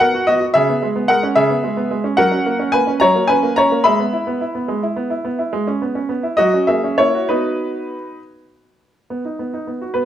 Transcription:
0.00 B3 A#4 F#5
0.14 F#4
0.27 B3 F#4 D#5
0.41 F#4
0.54 C#3 G#4 E5
0.69 B3
0.82 G#3
0.96 B3
1.08 G#3 A#4 F#5
1.23 C#4
1.35 C#3 G#4 E5
1.50 B3
1.64 G#3
1.77 B3
1.91 G#3
2.04 C#4
2.17 F#3 A#4 F#5
2.31 C#4
2.46 A#3
2.59 C#4
2.72 A#3 B4 G#5
2.87 C#4
3.00 F#3 C#5 A#5
3.15 A#3
3.27 C#4 B4 G#5
3.43 A#3
3.56 C#4 C#5 A#5
3.72 A#3
3.84 G#3 E5 B5
3.99 B3
4.13 E4
4.27 B3
4.41 E4
4.55 B3
4.68 G#3
4.83 E4
4.96 B3
5.10 E4
5.25 B3
5.39 E4
5.53 G#3
5.67 C#4
5.82 B3
5.95 C#4
6.09 B3
6.23 E4
6.37 F#3 F#4 D#5
6.54 C#4
6.67 A#3 G#4 E5
6.84 C#4
6.98 A#3 E4 C#5
7.15 F#4
7.29 B3 D#4 F#4 B4
9.10 B3
9.25 D#4
9.39 B3
9.53 D#4
9.67 B3
9.82 F#4
9.94 B3 B4

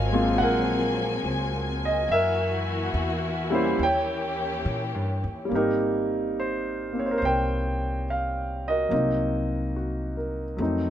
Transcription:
Already playing: G#1 F3 F#3 A#3 C4 D#5 F5 G#5
0.13 G#3 A#3 C4 F4
0.38 A#1 F#5
0.43 A#4
1.24 C#2
1.85 D#5
2.08 F#2 E3 A#3 E4 F#4 E5
2.13 A#4
2.94 E2
3.50 G3 A#3 C#4 E4
3.55 C5
3.76 D#2 E3 A#3 C#4 G4
3.83 C#5 G5
4.65 A#2
4.94 G2
5.24 D#2
5.45 G3 A#3
5.51 G#1 C4 D#4 G4 A#4
6.40 C5
6.93 A#3 C4
6.99 C#5
7.06 C5
7.11 A#4
7.18 C2 C5
7.25 A#4 C5 G5
8.10 F5
8.68 F#4 A#4 D#5
8.88 C2 F#3 A#3 C4
8.94 D#4
9.76 F#4
10.17 A#4
10.57 F2 F#3 A3 C4
10.62 D#4

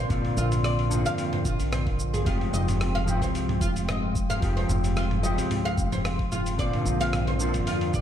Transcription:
Already playing: A#4 D5 F5 C6
0.08 A#1 D3 A#3 C4, kick, mid tom, open hi-hat, cabasa
0.12 F4
0.25 open hi-hat
0.37 A#1 F4, cabasa
0.52 mid tom, open hi-hat, cabasa
0.64 D5, cross-stick, open hi-hat, cabasa
0.79 open hi-hat
0.89 D3 A#3 C4, mid tom, cabasa
0.93 F4
1.06 F2 F5, open hi-hat, cabasa
1.18 open hi-hat, cabasa
1.33 C5, mid tom, open hi-hat
1.45 A#1 F4, kick, cabasa
1.60 A#1, open hi-hat, cabasa
1.73 C5, cross-stick, mid tom, open hi-hat, cabasa
1.87 kick, open hi-hat
2.00 cabasa
2.14 G#4, mid tom, open hi-hat, cabasa
2.24 F1 F3 G#3 C4 F4 G4 G5, kick, mid tom, open hi-hat, cabasa
2.41 open hi-hat
2.53 F1 D#5, cabasa
2.68 mid tom, open hi-hat, cabasa
2.81 cross-stick, open hi-hat, cabasa
2.95 F5, open hi-hat
3.05 F3 G#3 C4, mid tom, cabasa
3.09 G4
3.22 C2 C5, kick, open hi-hat, cabasa
3.35 open hi-hat, cabasa
3.49 mid tom, open hi-hat
3.61 F1 F4, kick, cabasa
3.76 F1, open hi-hat, cabasa
3.89 D#5, cross-stick, mid tom, open hi-hat, cabasa
4.15 kick, cabasa
4.30 F5, mid tom, open hi-hat, cabasa
4.40 F1 F3 G#3 C4, kick, open hi-hat, cabasa
4.44 G4
4.57 C5, open hi-hat
4.69 F1, mid tom, cabasa
4.84 open hi-hat, cabasa
4.97 F4, cross-stick, open hi-hat, cabasa
5.11 mid tom, open hi-hat
5.21 F3 G#3 C4 G4 D#5, cabasa
5.38 C2, open hi-hat, cabasa
5.51 mid tom, open hi-hat, cabasa
5.65 F5, open hi-hat
5.78 F1, kick, cabasa
5.92 F1 C5, mid tom, open hi-hat, cabasa
6.05 cross-stick, open hi-hat, cabasa
6.19 kick, open hi-hat
6.32 F4, mid tom, cabasa
6.46 open hi-hat, cabasa
6.57 A#1 D3 A#3 C4 A#4 D5 F5 C6, kick, open hi-hat, cabasa
6.61 F4
6.74 mid tom, open hi-hat
6.85 A#1, cabasa
7.01 F5, open hi-hat, cabasa
7.13 cross-stick, mid tom, open hi-hat, cabasa
7.27 C5, open hi-hat
7.38 D3 A#3 C4 F4, cabasa
7.54 F2, kick, mid tom, open hi-hat, cabasa
7.67 F4, open hi-hat, cabasa
7.81 open hi-hat
7.94 A#1 D5, kick, mid tom, cabasa

